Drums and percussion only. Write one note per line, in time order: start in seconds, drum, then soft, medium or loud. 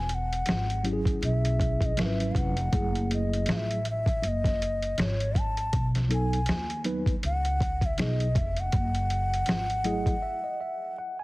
0.09 closed hi-hat medium
0.33 closed hi-hat soft
0.46 snare loud
0.46 closed hi-hat medium
0.70 closed hi-hat soft
0.85 closed hi-hat medium
1.05 kick medium
1.05 closed hi-hat soft
1.23 closed hi-hat medium
1.45 closed hi-hat medium
1.60 kick medium
1.60 closed hi-hat medium
1.81 kick medium
1.81 closed hi-hat medium
1.97 snare loud
1.97 closed hi-hat medium
2.20 closed hi-hat medium
2.35 kick medium
2.35 closed hi-hat medium
2.57 closed hi-hat medium
2.73 kick loud
2.73 closed hi-hat medium
2.95 closed hi-hat soft
3.11 closed hi-hat medium
3.33 closed hi-hat soft
3.46 snare loud
3.46 closed hi-hat medium
3.71 closed hi-hat soft
3.85 closed hi-hat medium
4.06 kick medium
4.06 closed hi-hat soft
4.23 closed hi-hat medium
4.44 kick medium
4.44 snare soft
4.44 closed hi-hat medium
4.62 closed hi-hat medium
4.82 closed hi-hat soft
4.98 snare loud
4.98 closed hi-hat medium
5.20 closed hi-hat soft
5.35 kick medium
5.35 closed hi-hat medium
5.57 closed hi-hat soft
5.73 kick loud
5.73 closed hi-hat medium
5.95 snare soft
5.95 closed hi-hat medium
6.11 closed hi-hat medium
6.33 closed hi-hat soft
6.46 snare loud
6.46 closed hi-hat medium
6.70 closed hi-hat soft
6.84 closed hi-hat medium
7.06 kick medium
7.06 closed hi-hat soft
7.23 closed hi-hat medium
7.45 closed hi-hat medium
7.60 kick medium
7.60 closed hi-hat medium
7.81 kick medium
7.81 closed hi-hat soft
7.98 snare loud
7.98 closed hi-hat medium
8.20 closed hi-hat medium
8.35 kick loud
8.35 closed hi-hat medium
8.57 closed hi-hat soft
8.72 kick loud
8.72 closed hi-hat medium
8.95 closed hi-hat medium
9.10 closed hi-hat medium
9.34 closed hi-hat soft
9.46 snare loud
9.46 closed hi-hat medium
9.70 closed hi-hat soft
9.84 closed hi-hat medium
10.06 kick medium
10.06 closed hi-hat soft